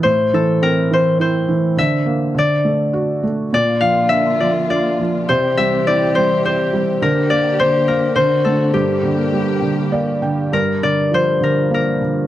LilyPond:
<<
  \new Staff \with { instrumentName = "Harp" } { \time 3/4 \key g \dorian \tempo 4 = 103 c''8 a'8 bes'8 c''8 c''4 | e''4 d''4. r8 | d''8 f''8 e''8 d''8 d''4 | c''8 e''8 d''8 c''8 c''4 |
bes'8 d''8 c''8 bes'8 c''8 a'8 | g'2~ g'8 r8 | bes'8 d''8 c''8 bes'8 bes'4 | }
  \new Staff \with { instrumentName = "String section" } { \time 3/4 \key g \dorian << { r2. | r2. | <bes f'>2. | <c' g'>2. |
<bes g'>2 <c' fis'>4 | <bes g'>2. | r2. | } \\ { r2. | r2. | d2. | e2. |
d2.~ | d2. | r2. | } >> }
  \new Staff \with { instrumentName = "Felt piano" } { \clef bass \time 3/4 \key g \dorian a,8 e8 c'8 e8 e'8 e8 | d8 bes8 d8 a8 fis'8 a8 | bes,8 f8 d'8 f8 f'8 f8 | c8 g8 e'8 g8 g'8 g8 |
d8 bes8 d8 bes8 d8 a8 | g,8 d8 g8 d8 <bes d''>8 <d g''>8 | g,8 d8 f8 d8 bes8 d8 | }
>>